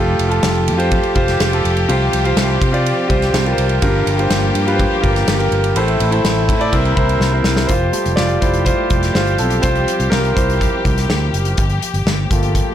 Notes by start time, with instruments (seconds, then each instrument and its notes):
Already playing: fingered electric bass F1, string section F3 A3 G4, grand piano F4 G4 A4
0.19 fingered electric bass F1, ride
0.28 grand piano F4 G4 A4, ride
0.43 fingered electric bass F1, snare, ride
0.55 ride
0.68 fingered electric bass F2, ride
0.77 grand piano F4 G4 C5, ride
0.91 kick, ride
1.03 ride
1.15 fingered electric bass F1, grand piano F4 G4 C5, kick, ride
1.28 snare, ride
1.40 fingered electric bass F1, snare, ride
1.52 grand piano F4 G4 A4, ride
1.65 fingered electric bass F1, ride
1.77 ride
1.88 fingered electric bass C2, grand piano C3 F4 G4 C5, string section C4, ride
2.13 fingered electric bass C2, ride
2.24 grand piano F4 G4 C5, ride
2.37 fingered electric bass C2, snare, ride
2.62 fingered electric bass C3, kick, ride
2.72 grand piano F4 G4 D5, ride
2.86 ride
3.08 fingered electric bass C2, grand piano F4 G4 C5, kick, ride
3.22 snare, ride
3.34 fingered electric bass C2, snare, ride
3.45 grand piano F4 G4 A#4, ride
3.52 grand piano C5
3.58 fingered electric bass C2, ride
3.69 ride
3.82 fingered electric bass G1, grand piano G2 F4 G4 A#4, string section A#3 G4, kick, ride
4.06 fingered electric bass G1, ride
4.18 grand piano F4 G4 C5, ride
4.30 fingered electric bass G1, snare, ride
4.55 fingered electric bass G2, ride
4.66 grand piano F4 G4 B4, ride
4.74 grand piano C5
4.80 kick, ride
5.01 fingered electric bass G1, grand piano F4 G4 A#4, kick, ride
5.16 snare, ride
5.28 fingered electric bass G1, snare, ride
5.38 grand piano F4 G4 A#4, ride
5.51 fingered electric bass G1, ride
5.64 ride
5.75 fingered electric bass A1, grand piano A2 E4 A4 C5, string section C3 A3 E4, ride
5.88 ride
6.00 fingered electric bass A1, ride
6.11 grand piano E4 A4 C5, ride
6.24 fingered electric bass A1, snare, ride
6.49 fingered electric bass A2, kick, ride
6.60 grand piano E4 A4 D5, ride
6.72 fingered electric bass C2, string section C3 A#3, grand piano C3 E4 A#4 C5, kick, ride
6.85 ride
6.96 fingered electric bass C2, grand piano E4 A#4 C5, kick, ride
7.09 ride
7.20 fingered electric bass C2, snare
7.32 grand piano E4 A#4 C5
7.44 fingered electric bass C2, snare
7.57 snare
7.67 fingered electric bass F1, string section F3 A3 G4, grand piano F4 C5, kick, closed hi-hat
7.92 grand piano G3 A3 F4, closed hi-hat
8.06 fingered electric bass F1, closed hi-hat
8.16 fingered electric bass F1, grand piano F4 D5, snare
8.29 closed hi-hat
8.41 fingered electric bass F1, grand piano E4 C5, kick, closed hi-hat
8.54 closed hi-hat
8.65 grand piano F4 C5, kick, closed hi-hat
8.90 fingered electric bass F1, kick, closed hi-hat
9.03 snare, closed hi-hat
9.14 fingered electric bass G1, grand piano F4 C5, snare
9.27 closed hi-hat
9.38 fingered electric bass B1, grand piano C4 A4, closed hi-hat
9.50 closed hi-hat
9.62 fingered electric bass C2, grand piano G3 C4 F4 C5, string section C4, kick, closed hi-hat
9.75 closed hi-hat
9.88 closed hi-hat
10.00 fingered electric bass C2, closed hi-hat
10.10 fingered electric bass C2, grand piano F4 A#4, snare
10.24 closed hi-hat
10.35 fingered electric bass C2, grand piano E4 C5, kick, closed hi-hat
10.49 closed hi-hat
10.61 kick, closed hi-hat
10.85 fingered electric bass C2, kick, closed hi-hat
10.98 snare, closed hi-hat
11.09 fingered electric bass D2, snare
11.33 fingered electric bass F#1, closed hi-hat
11.45 closed hi-hat
11.57 fingered electric bass G1, string section A#2, kick, closed hi-hat
11.70 closed hi-hat
11.82 closed hi-hat
11.94 fingered electric bass G1, closed hi-hat
12.05 fingered electric bass G1, snare
12.30 fingered electric bass G1, grand piano A3 A#3 F4, kick, closed hi-hat
12.43 closed hi-hat
12.55 kick, closed hi-hat